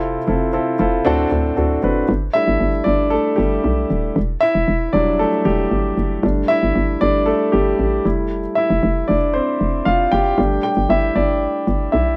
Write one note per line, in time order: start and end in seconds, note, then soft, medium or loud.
0.00 0.18 F1 medium
0.00 0.49 C3 medium
0.00 0.17 C4 medium
0.00 0.17 E4 medium
0.00 0.18 F4 medium
0.00 0.18 A4 medium
0.27 0.59 F1 medium
0.27 0.48 C4 medium
0.27 0.48 E4 medium
0.27 0.49 F4 medium
0.27 0.49 A4 medium
0.53 0.74 C4 medium
0.53 0.74 E4 medium
0.53 0.74 F4 medium
0.53 0.75 A4 medium
0.79 1.01 F1 loud
0.79 1.00 C4 medium
0.79 1.00 E4 medium
0.79 1.00 F4 medium
0.79 1.01 A4 medium
1.05 1.26 D2 loud
1.05 1.79 A2 medium
1.05 1.26 C4 loud
1.05 1.26 D4 medium
1.05 1.26 F#4 medium
1.05 1.27 A4 loud
1.31 1.52 D2 medium
1.31 1.52 C4 medium
1.31 1.52 D4 medium
1.31 1.52 F#4 medium
1.31 1.53 A4 medium
1.56 1.78 D2 medium
1.56 1.77 C4 medium
1.56 1.78 D4 medium
1.56 1.78 F#4 medium
1.56 1.78 A4 medium
1.82 2.04 F#1 medium
1.82 2.03 C4 medium
1.82 2.04 D4 medium
1.82 2.04 F#4 medium
1.82 2.04 B4 medium
2.09 2.30 G1 loud
2.33 2.69 G3 soft
2.33 2.69 A3 soft
2.33 2.70 D4 soft
2.33 2.84 E4 medium
2.33 2.88 E5 loud
2.48 2.58 G1 medium
2.60 2.82 G1 medium
2.84 3.18 G1 medium
2.84 3.11 D4 medium
2.84 3.12 D5 medium
3.10 3.37 A3 medium
3.10 3.35 A4 medium
3.36 3.60 G1 medium
3.36 3.87 G3 soft
3.36 3.85 G4 medium
3.64 3.86 B1 medium
3.90 4.12 D#1 medium
4.16 4.37 E1 loud
4.41 4.91 E4 medium
4.41 4.95 E5 medium
4.55 4.66 E1 medium
4.68 4.89 E1 medium
4.93 5.25 E1 medium
4.93 5.28 F#3 medium
4.93 5.28 G3 soft
4.93 5.18 D4 medium
4.93 5.29 E4 medium
4.93 5.20 D5 medium
5.19 5.45 A3 medium
5.19 5.46 A4 medium
5.45 5.67 E1 loud
5.45 5.94 G3 soft
5.45 5.94 G4 medium
5.71 5.93 G1 medium
5.97 6.19 F#1 medium
6.23 6.45 G1 loud
6.23 7.00 G3 medium
6.23 7.00 A3 soft
6.23 7.00 D4 medium
6.48 6.98 E4 medium
6.48 7.02 E5 medium
6.63 6.73 G1 medium
6.76 6.97 G1 medium
7.01 7.33 G1 medium
7.01 7.25 G3 soft
7.01 7.25 A3 soft
7.01 7.26 D4 medium
7.01 7.25 D5 medium
7.26 7.33 A3 medium
7.26 7.32 A4 medium
7.52 7.75 G1 medium
7.52 8.02 G3 medium
7.52 8.01 G4 medium
7.79 8.00 A1 medium
8.05 8.48 F1 medium
8.05 8.39 G3 soft
8.05 8.39 A3 soft
8.05 8.40 E4 medium
8.55 9.06 E4 medium
8.55 9.09 E5 medium
8.70 8.81 F1 medium
8.83 9.04 F1 loud
9.08 9.41 F1 loud
9.08 9.15 D4 medium
9.08 9.14 D5 medium
9.34 9.83 C4 medium
9.34 9.87 C5 medium
9.61 9.82 F1 medium
9.85 10.08 F1 medium
9.85 10.11 F4 medium
9.85 10.13 F5 medium
10.12 10.34 F#1 medium
10.12 10.61 G4 medium
10.12 10.60 G5 medium
10.37 10.59 G1 loud
10.37 12.17 G3 soft
10.37 12.17 A3 soft
10.37 11.15 D4 medium
10.63 10.71 G4 medium
10.63 10.69 G5 medium
10.77 10.88 G1 medium
10.89 11.11 G1 medium
10.89 10.97 E4 medium
10.89 10.96 E5 medium
11.16 11.48 G1 loud
11.16 11.65 D4 medium
11.16 11.64 D5 medium
11.67 11.89 G1 medium
11.92 12.15 B1 medium
11.92 12.17 E4 medium
11.92 12.17 E5 medium